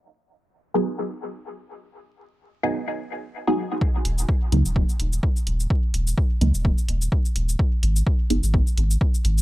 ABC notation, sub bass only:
X:1
M:4/4
L:1/16
Q:"Swing 16ths" 1/4=127
K:Ebm
V:1 name="Sub bass" clef=bass
z16 | z16 | z2 E,,,2 z2 D,, E,,,2 z E,,,2 z2 E,,,2 | z2 E,,,2 z2 D,, E,,,2 z E,,,2 z2 E,,,2 |
z2 A,,,2 z2 G,,, A,,,2 z A,,,2 z2 A,,,2 |]